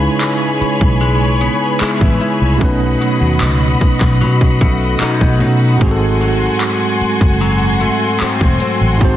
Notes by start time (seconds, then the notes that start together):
Already playing: C#3 G#3 D#4 E4 G#4 B4 C#5 G#5 B5
0.21 clap, closed hi-hat
0.61 muted fingered electric bass stroke, closed hi-hat
0.81 B1, kick
1.01 G#3, closed hi-hat
1.41 B3, closed hi-hat
1.81 G#3 B3 E4, muted fingered electric bass stroke, clap, closed hi-hat
2.01 A1, kick
2.21 E4, closed hi-hat
2.41 C2
2.57 B1 B2 A3 C#4 F#4 D#5 F#5 B5, kick
2.61 D#4 B4, closed hi-hat
3.01 F#3, closed hi-hat
3.21 D#2
3.41 C#2, clap, closed hi-hat
3.81 kick, closed hi-hat
4.01 B1, kick, clap
4.21 B2 F#3, closed hi-hat
4.41 kick
4.61 B1 A3, kick, closed hi-hat
5.01 F#3 A3 D#4, muted fingered electric bass stroke, clap, closed hi-hat
5.21 B1, kick
5.39 B2 A3 C#4 D#4 F#4, closed hi-hat
5.77 G#1 G#2 G#3 C4 G#5 C6, kick, closed hi-hat
5.83 F#4 G#4
5.91 A4
6.21 F#3, closed hi-hat
6.61 clap, closed hi-hat
7.01 muted fingered electric bass stroke, closed hi-hat
7.21 F#1, kick
7.41 F#3, closed hi-hat
7.81 A3, closed hi-hat
8.20 F#3 A3 C4, muted fingered electric bass stroke, clap, closed hi-hat
8.41 E1, kick
8.60 C4, closed hi-hat
8.81 A1
8.97 G#2 G#3 C4 A5, kick, closed hi-hat
9.03 F#4 C5